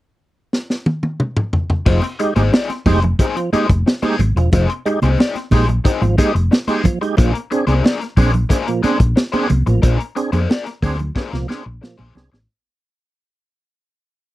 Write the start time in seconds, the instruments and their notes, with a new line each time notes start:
0.53 snare
0.70 snare
0.86 high tom
1.03 high tom
1.20 mid tom
1.37 mid tom
1.53 floor tom
1.70 floor tom
1.86 fingered electric bass F1, tonewheel organ F3, overdriven electric guitar C4 D#4 G#4 C5, kick, crash
2.02 muted overdriven electric guitar stroke, closed hi-hat, muted conga
2.19 tonewheel organ G#3 D#4 G4, muted overdriven electric guitar stroke, closed hi-hat
2.36 fingered electric bass G#1, overdriven electric guitar C4 D#4 G#4 C5, tonewheel organ D#4 G4, closed hi-hat, high conga
2.53 overdriven electric guitar C4 D#4 G#4 D5, snare, muted conga
2.70 muted overdriven electric guitar stroke, snare, closed hi-hat, muted conga
2.86 fingered electric bass F1, tonewheel organ G#3 D#4 G4, overdriven electric guitar C4 D#4 G#4 C5, kick, open hi-hat, high conga, low conga
3.02 muted overdriven electric guitar stroke, closed hi-hat, low conga
3.19 overdriven electric guitar C4 D#4 G#4 C5, tonewheel organ D#4 G4, kick, closed hi-hat
3.36 tonewheel organ F3, muted overdriven electric guitar stroke, closed hi-hat
3.53 tonewheel organ G#3 D#4 G4, overdriven electric guitar C4 D#4 G#4 C5, muted fingered electric bass stroke, closed hi-hat, high conga
3.69 fingered electric bass F1, muted overdriven electric guitar stroke, kick, closed hi-hat
3.86 muted overdriven electric guitar stroke, snare
4.02 tonewheel organ G#3 D#4 G4, overdriven electric guitar C4 D#4 G#4 C5, closed hi-hat, muted conga, high conga
4.19 fingered electric bass G#1, muted overdriven electric guitar stroke, closed hi-hat, high conga, low conga
4.36 fingered electric bass E1, tonewheel organ F3, muted overdriven electric guitar stroke, closed hi-hat
4.52 fingered electric bass F1, tonewheel organ F3, overdriven electric guitar C4 D#4 G#4 C5, kick, closed hi-hat, muted conga
4.69 muted overdriven electric guitar stroke, closed hi-hat
4.86 tonewheel organ G#3 D#4 G4, muted overdriven electric guitar stroke, closed hi-hat
5.02 fingered electric bass C2, overdriven electric guitar C4 D#4 G#4 C5, tonewheel organ D#4 G4, closed hi-hat, high conga
5.18 overdriven electric guitar C4 D#4 G#4 D5, snare, muted conga
5.36 muted overdriven electric guitar stroke, snare, closed hi-hat, muted conga
5.51 fingered electric bass A#1, tonewheel organ G#3 D#4 G4, overdriven electric guitar C4 D#4 G#4 C5, kick, open hi-hat, high conga, low conga
5.69 muted overdriven electric guitar stroke, closed hi-hat, low conga
5.84 overdriven electric guitar C4 D#4 G#4 C5, tonewheel organ D#4 G4, kick, closed hi-hat
6.02 fingered electric bass G#1, tonewheel organ F3, muted overdriven electric guitar stroke, closed hi-hat, muted conga
6.18 tonewheel organ G#3 D#4 G4, overdriven electric guitar C4 D#4 G#4 C5, kick, closed hi-hat, high conga
6.35 fingered electric bass F1, muted overdriven electric guitar stroke, closed hi-hat
6.51 muted overdriven electric guitar stroke, snare, muted conga
6.68 tonewheel organ G#3 D#4 G4, overdriven electric guitar C4 D#4 G#4 C5, closed hi-hat, high conga
6.84 tonewheel organ F3, muted overdriven electric guitar stroke, kick, closed hi-hat, high conga, low conga
7.01 tonewheel organ G#3 D#4 G4, muted overdriven electric guitar stroke, closed hi-hat
7.17 fingered electric bass A#1, tonewheel organ A#2 F3, overdriven electric guitar A#3 D4 G#4 C5, kick, closed hi-hat, muted conga
7.34 muted overdriven electric guitar stroke, closed hi-hat
7.51 tonewheel organ C4 D4 G#4, muted overdriven electric guitar stroke, closed hi-hat
7.67 fingered electric bass C2, overdriven electric guitar A#3 D4 G#4 C5, tonewheel organ D4 G#4, closed hi-hat, high conga
7.83 overdriven electric guitar A#3 D4 G#4 D5, snare, muted conga
8.01 muted overdriven electric guitar stroke, snare, closed hi-hat
8.17 fingered electric bass A#1, overdriven electric guitar A#3 D4 G#4 C5, tonewheel organ C4 D4 G#4, kick, open hi-hat, high conga, low conga
8.33 muted overdriven electric guitar stroke, closed hi-hat, low conga
8.49 overdriven electric guitar A#3 D4 G#4 C5, tonewheel organ D4 G#4, kick, closed hi-hat, muted conga
8.67 tonewheel organ A#2 F3, muted overdriven electric guitar stroke, closed hi-hat, muted conga
8.83 overdriven electric guitar A#3 D4 G#4 C5, tonewheel organ C4 D4 G#4, muted fingered electric bass stroke, closed hi-hat, high conga
8.99 fingered electric bass A#1, muted overdriven electric guitar stroke, kick, closed hi-hat
9.16 muted overdriven electric guitar stroke, snare, muted conga
9.32 overdriven electric guitar A#3 D4 G#4 C5, tonewheel organ C4 D4 G#4, closed hi-hat, muted conga, high conga
9.49 fingered electric bass C2, muted overdriven electric guitar stroke, closed hi-hat, high conga, low conga
9.66 fingered electric bass A1, tonewheel organ A#2 F3, muted overdriven electric guitar stroke, closed hi-hat
9.82 fingered electric bass A#1, tonewheel organ A#2 F3, overdriven electric guitar A#3 D4 G#4 C5, kick, closed hi-hat
9.99 muted overdriven electric guitar stroke, closed hi-hat
10.15 tonewheel organ C4 D4 G#4, muted overdriven electric guitar stroke, closed hi-hat
10.32 fingered electric bass F2, overdriven electric guitar A#3 D4 G#4 C5, tonewheel organ D4 G#4, closed hi-hat, high conga
10.49 overdriven electric guitar A#3 D4 G#4 D5, snare, muted conga
10.66 muted overdriven electric guitar stroke, snare, closed hi-hat
10.82 fingered electric bass D2, overdriven electric guitar A#3 D4 G#4 C5, tonewheel organ C4 D4 G#4, kick, open hi-hat, high conga, low conga
10.99 muted overdriven electric guitar stroke, closed hi-hat, low conga
11.15 overdriven electric guitar A#3 D4 G#4 C5, tonewheel organ D4 G#4, kick, snare, muted conga
11.32 fingered electric bass C2, tonewheel organ A#2 F3, muted overdriven electric guitar stroke, snare, muted conga
11.48 overdriven electric guitar A#3 D4 G#4 C5, tonewheel organ C4 D4 G#4, snare, high conga
11.65 fingered electric bass A#1, muted overdriven electric guitar stroke
11.81 tonewheel organ A#2 F3, muted overdriven electric guitar stroke, snare
11.98 fingered electric bass A#1, overdriven electric guitar A#3 D4 G#4 C5, muted conga, high conga
12.15 fingered electric bass C2, tonewheel organ C4 D4 G#4, muted overdriven electric guitar stroke, snare, high conga, low conga
12.32 fingered electric bass A1, tonewheel organ D4 G#4, muted overdriven electric guitar stroke, snare